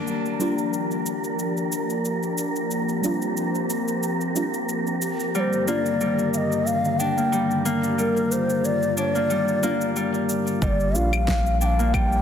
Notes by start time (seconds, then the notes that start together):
Already playing: G3 A#3 D4
0.07 F3 A#3 D4 G4 A#4, shaker
0.26 shaker
0.39 G3 A#3 D4 F4, shaker
0.58 shaker
0.73 shaker
0.91 shaker
1.06 shaker
1.24 shaker
1.39 shaker
1.57 shaker
1.72 shaker
1.90 shaker
2.05 shaker
2.23 shaker
2.38 shaker
2.56 shaker
2.70 C4, shaker
2.89 shaker
3.01 G3 A#3 D4, shaker
3.05 F4
3.22 shaker
3.37 shaker
3.55 shaker
3.70 shaker
3.88 shaker
4.03 shaker
4.21 shaker
4.35 G3 A#3 D4 F4, shaker
4.54 shaker
4.69 shaker
4.87 shaker
5.02 shaker
5.20 shaker
5.34 G2 D3 D#3 G3 A#3 D5, shaker
5.40 C5
5.53 shaker
5.67 G3 A#3 D4 F4 D5, shaker
5.86 shaker
6.01 G3, shaker
6.19 shaker
6.34 D#5 F5, shaker
6.52 shaker
6.66 F5, shaker
6.85 shaker
6.99 D4 G5, shaker
7.17 A#3, shaker
7.32 G3, shaker
7.51 shaker
7.65 A#3, shaker
7.84 shaker
7.98 G3 F4 A#4, shaker
8.17 shaker
8.32 C5, shaker
8.50 shaker
8.65 D5, shaker
8.83 shaker
8.97 D4 C#5, shaker
9.10 D5
9.15 A#3, shaker
9.30 G3, shaker
9.48 shaker
9.62 G3 A#3 D4 F4, shaker
9.81 shaker
9.96 G3, shaker
10.14 shaker
10.29 shaker
10.47 shaker
10.62 G1 G3 D#5, kick, shaker
10.67 D5
10.80 shaker
10.94 A#1 G3 A#3 D4 F4 F5, shaker
11.13 claves, shaker
11.28 kick, snare, shaker
11.46 shaker
11.61 D4 G5, shaker
11.66 F5
11.79 A#3, shaker
11.94 G3 G5, kick, claves, shaker
12.12 shaker